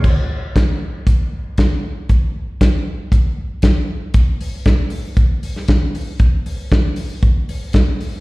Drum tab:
CC |x---------------|----------------|----------------|----------------|
HH |----x---x---x---|x---x---x---x---|x-o-x-o-x-o-x-o-|x-o-x-o-x-o-x-o-|
SD |----o-------o---|----o-------o---|----o------oo---|----o-------o---|
BD |o---o---o---o---|o---o---o---o---|o---o---o---o---|o---o---o---o---|